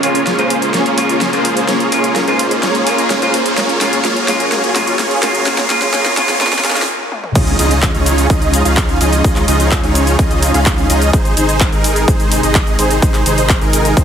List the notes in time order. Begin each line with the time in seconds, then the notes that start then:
Already playing: C#3 G#3 A#3 F4 A#4, riser
0.02 C#3 G#3 A#3 C#4 F4 G#4 C#5, open hi-hat
0.15 closed hi-hat
0.27 snare, closed hi-hat
0.38 C#3 G#3 A#3 C#4 F4 G#4 C5, closed hi-hat
0.50 open hi-hat
0.62 closed hi-hat
0.74 A#3 C#4 F4 G#4 C#5, snare, closed hi-hat
0.86 closed hi-hat
0.97 C#3 G#3 A#3 C#4 F4 G#4 C#5, open hi-hat
1.09 closed hi-hat
1.21 snare, closed hi-hat
1.32 C#3 G#3 A#3 C#4 F4 G#4 C5, closed hi-hat
1.45 open hi-hat
1.57 closed hi-hat
1.68 A#3 C#4 D#4 F4 G#4 C#5, snare, closed hi-hat
1.80 closed hi-hat
1.91 C#3 G#3 A#3 C#4 F4 G#4 C#5, open hi-hat
2.04 closed hi-hat
2.16 snare, closed hi-hat
2.27 C#3 G#3 A#3 C#4 F4 G#4 C5, closed hi-hat
2.39 open hi-hat
2.51 closed hi-hat
2.63 A#3 C#4 F4 G#4 C#5, snare, closed hi-hat
2.75 closed hi-hat
2.86 C#3 G#3 A#3 C#4 F4 G#4 C#5, open hi-hat
2.98 closed hi-hat
3.10 snare, closed hi-hat
3.21 C#3 G#3 A#3 C#4 F4 G#4 C5, closed hi-hat
3.34 open hi-hat
3.46 closed hi-hat
3.57 C#3 F#3 A#3 C#4 F4 F#4 G#4 C#5, snare, closed hi-hat
3.69 closed hi-hat
3.81 C#3 G#3 A#3 C#4 F4 G#4 C#5, snare, open hi-hat
3.93 closed hi-hat
4.05 A#3 C#4 F4 G#4 C#5, snare, closed hi-hat
4.17 closed hi-hat
4.28 C#3 G#3 A#3 C#4 F4 G#4 C#5, snare, open hi-hat
4.40 closed hi-hat
4.52 A#3 C#4 F4 G#4 C#5, snare, closed hi-hat
4.64 closed hi-hat
4.75 C#3 G#3 A#3 C#4 F4 G#4 C#5, snare, open hi-hat
4.87 closed hi-hat
4.99 A#3 C#4 F4 G#4 C#5, snare, closed hi-hat
5.11 closed hi-hat
5.22 C#3 G#3 A#3 C#4 F4 G#4 C#5, snare, open hi-hat
5.35 closed hi-hat
5.46 C#3 G#3 A#3 C#4 F4 G#4 C#5, snare, closed hi-hat, noise sweep
5.58 snare, closed hi-hat
5.69 C#3 G#3 A#3 C#4 F4 G#4 C#5, snare, open hi-hat
5.82 snare, closed hi-hat
5.93 C#3 G#3 A#3 C#4 F4 G#4 C#5, snare, closed hi-hat
6.06 snare, closed hi-hat
6.17 C#3 G#3 A#3 C#4 F4 G#4 C#5, snare, open hi-hat
6.29 snare, closed hi-hat
6.40 C#3 G#3 A#3 C#4 F4 G#4 C#5, snare, closed hi-hat
6.47 snare
6.53 snare, open hi-hat
6.59 snare
6.64 C#3 G#3 A#3 C#4 F4 G#4 C#5, snare, open hi-hat
6.70 snare
6.76 snare, closed hi-hat
6.82 snare
7.12 high tom
7.24 mid tom
7.35 C#2 C#3 F3 G#3 C#4 D#4 F4 G#4 D#5, kick, closed hi-hat, crash, impact, shaker
7.47 closed hi-hat, shaker
7.59 C#2 C#4 D#4 F4 G#4 D#5, open hi-hat, shaker
7.71 closed hi-hat, shaker
7.82 kick, clap, closed hi-hat, shaker
7.94 C#2 C#4 D#4 F4 G#4 C#5, closed hi-hat, shaker
8.06 open hi-hat, shaker
8.18 closed hi-hat, shaker
8.30 C#2 C#4 D#4 F4 G#4 D#5, kick, closed hi-hat, shaker
8.42 closed hi-hat, shaker
8.54 open hi-hat, shaker
8.65 C#2 C#4 D#4 F4 G#4 F5, closed hi-hat, shaker
8.77 kick, clap, closed hi-hat, shaker
8.89 closed hi-hat, shaker
9.01 C#2 C#4 D#4 F4 G#4 D#5, open hi-hat, shaker
9.13 closed hi-hat, shaker
9.24 C#2 C#4 D#4 F4 G#4 D#5, kick, closed hi-hat, shaker
9.36 clap, closed hi-hat, shaker
9.48 C#2 C#4 D#4 F4 G#4 D#5, open hi-hat, shaker
9.60 closed hi-hat, shaker
9.71 kick, clap, closed hi-hat, shaker
9.83 C#2 C#4 D#4 F4 G#4 C#5, closed hi-hat, shaker
9.95 open hi-hat, shaker
10.07 closed hi-hat, shaker
10.19 C#2 C#4 D#4 F4 G#4 D#5, kick, closed hi-hat, shaker
10.31 closed hi-hat, shaker
10.42 open hi-hat, shaker
10.54 C#2 C#4 D#4 F4 G#4 F5, closed hi-hat, shaker
10.66 kick, clap, closed hi-hat, shaker
10.78 closed hi-hat, shaker
10.90 C#2 C#4 D#4 F4 G#4 D#5, open hi-hat, shaker
11.02 closed hi-hat, shaker
11.13 G#1 C3 D#3 G#3 D#4 G#4 C5, kick, closed hi-hat, shaker
11.25 closed hi-hat, shaker
11.37 G#1 D#4 G#4 C5, open hi-hat, shaker
11.49 closed hi-hat, shaker
11.60 kick, clap, closed hi-hat, shaker
11.72 G#1 D#4 G#4 A#4, closed hi-hat, shaker
11.84 open hi-hat, shaker
11.96 closed hi-hat, shaker
12.08 G#1 D#4 G#4 C5, kick, closed hi-hat, shaker
12.20 closed hi-hat, shaker
12.32 open hi-hat, shaker
12.43 G#1 D#4 G#4 D#5, closed hi-hat, shaker
12.55 kick, clap, closed hi-hat, shaker
12.67 closed hi-hat, shaker
12.79 G#1 D#4 G#4 C5, open hi-hat, shaker
12.91 closed hi-hat, shaker
13.02 G#1 D#4 F4 G#4 C5, kick, closed hi-hat, shaker
13.14 clap, closed hi-hat, shaker
13.26 G#1 D#4 G#4 C5, open hi-hat, shaker
13.38 closed hi-hat, shaker
13.49 kick, clap, closed hi-hat, shaker
13.61 G#1 D#4 G#4 A#4, closed hi-hat, shaker
13.73 open hi-hat, shaker
13.85 closed hi-hat, shaker
13.97 G#1 D#4 G#4 C5, kick, closed hi-hat, shaker